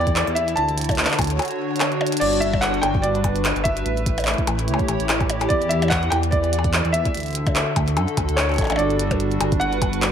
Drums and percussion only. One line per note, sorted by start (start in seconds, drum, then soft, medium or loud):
0.01 closed hi-hat soft
0.07 kick loud
0.07 closed hi-hat soft
0.16 clap loud
0.16 closed hi-hat medium
0.27 closed hi-hat soft
0.36 closed hi-hat medium
0.48 closed hi-hat medium
0.57 closed hi-hat medium
0.69 closed hi-hat soft
0.78 closed hi-hat medium
0.81 closed hi-hat medium
0.84 closed hi-hat medium
0.89 kick loud
0.89 closed hi-hat medium
0.89 percussion blips loud
0.91 closed hi-hat soft
0.95 clap loud
0.95 closed hi-hat soft
0.98 closed hi-hat medium
1.05 clap medium
1.10 clap medium
1.10 closed hi-hat soft
1.19 kick loud
1.19 closed hi-hat medium
1.19 percussion blips medium
1.22 closed hi-hat medium
1.24 closed hi-hat medium
1.27 closed hi-hat soft
1.30 closed hi-hat medium
1.39 closed hi-hat medium
1.39 percussion blips medium
1.42 closed hi-hat soft
1.45 closed hi-hat soft
1.48 closed hi-hat soft
1.76 closed hi-hat medium
1.80 clap loud
1.80 closed hi-hat medium
1.80 percussion blips medium
1.92 closed hi-hat soft
2.01 percussion blips medium
2.07 closed hi-hat medium
2.12 closed hi-hat medium
2.17 closed hi-hat medium
2.21 closed hi-hat medium
2.21 crash medium
2.33 closed hi-hat soft
2.42 closed hi-hat loud
2.53 kick loud
2.53 percussion blips medium
2.63 clap loud
2.63 closed hi-hat medium
2.74 closed hi-hat soft
2.83 closed hi-hat medium
2.83 percussion blips medium
2.95 kick loud
3.04 closed hi-hat medium
3.15 closed hi-hat soft
3.24 kick loud
3.24 closed hi-hat loud
3.24 percussion blips medium
3.36 closed hi-hat medium
3.45 clap loud
3.45 closed hi-hat medium
3.56 closed hi-hat soft
3.65 kick loud
3.65 closed hi-hat loud
3.77 closed hi-hat medium
3.86 closed hi-hat medium
3.97 closed hi-hat soft
4.06 kick loud
4.06 closed hi-hat loud
4.18 closed hi-hat medium
4.18 percussion blips medium
4.20 closed hi-hat soft
4.24 clap loud
4.24 closed hi-hat soft
4.24 percussion blips medium
4.27 closed hi-hat medium
4.31 closed hi-hat soft
4.31 percussion blips medium
4.34 closed hi-hat soft
4.38 kick loud
4.38 closed hi-hat soft
4.47 closed hi-hat loud
4.47 percussion blips medium
4.59 closed hi-hat medium
4.68 closed hi-hat medium
4.74 percussion blips medium
4.79 kick loud
4.79 closed hi-hat soft
4.88 closed hi-hat loud
4.88 percussion blips medium
5.00 closed hi-hat medium
5.09 clap loud
5.09 closed hi-hat medium
5.09 percussion blips medium
5.21 kick loud
5.21 closed hi-hat soft
5.21 percussion blips soft
5.30 closed hi-hat loud
5.30 percussion blips medium
5.41 closed hi-hat medium
5.41 percussion blips medium
5.50 kick loud
5.50 closed hi-hat medium
5.62 closed hi-hat soft
5.71 closed hi-hat loud
5.82 closed hi-hat medium
5.82 percussion blips medium
5.88 kick loud
5.88 clap loud
5.88 closed hi-hat medium
5.88 percussion blips medium
5.95 percussion blips medium
6.03 closed hi-hat soft
6.12 closed hi-hat medium
6.12 percussion blips medium
6.23 closed hi-hat medium
6.32 kick loud
6.32 closed hi-hat medium
6.44 closed hi-hat soft
6.53 closed hi-hat loud
6.59 percussion blips medium
6.64 kick loud
6.64 closed hi-hat medium
6.73 clap loud
6.73 closed hi-hat medium
6.85 closed hi-hat soft
6.94 closed hi-hat loud
7.05 kick loud
7.05 closed hi-hat medium
7.15 closed hi-hat soft
7.17 closed hi-hat soft
7.20 closed hi-hat soft
7.23 closed hi-hat soft
7.26 closed hi-hat soft
7.28 closed hi-hat soft
7.31 closed hi-hat soft
7.33 closed hi-hat soft
7.35 closed hi-hat medium
7.47 kick loud
7.47 closed hi-hat medium
7.47 percussion blips medium
7.56 clap loud
7.56 closed hi-hat medium
7.76 kick loud
7.76 closed hi-hat medium
7.76 percussion blips medium
7.88 closed hi-hat medium
7.97 closed hi-hat medium
7.97 percussion blips medium
8.08 closed hi-hat soft
8.17 kick loud
8.17 closed hi-hat medium
8.17 percussion blips medium
8.29 closed hi-hat medium
8.38 clap loud
8.38 closed hi-hat medium
8.38 percussion blips medium
8.49 closed hi-hat soft
8.49 percussion blips soft
8.52 closed hi-hat soft
8.52 percussion blips soft
8.54 closed hi-hat soft
8.54 percussion blips soft
8.56 kick loud
8.56 closed hi-hat soft
8.56 percussion blips soft
8.58 closed hi-hat medium
8.58 percussion blips soft
8.61 closed hi-hat soft
8.61 percussion blips soft
8.64 closed hi-hat soft
8.64 percussion blips medium
8.64 percussion blips soft
8.67 closed hi-hat soft
8.67 percussion blips soft
8.70 closed hi-hat medium
8.70 percussion blips medium
8.72 percussion blips medium
8.76 closed hi-hat medium
8.76 percussion blips medium
8.90 closed hi-hat soft
8.99 closed hi-hat medium
9.11 kick loud
9.11 closed hi-hat medium
9.11 percussion blips medium
9.20 closed hi-hat medium
9.32 closed hi-hat soft
9.41 closed hi-hat medium
9.41 percussion blips medium
9.52 kick loud
9.52 closed hi-hat soft
9.61 closed hi-hat soft
9.73 closed hi-hat soft
9.82 kick loud
9.82 closed hi-hat medium
9.82 percussion blips medium
9.93 closed hi-hat soft
10.02 clap loud
10.02 closed hi-hat medium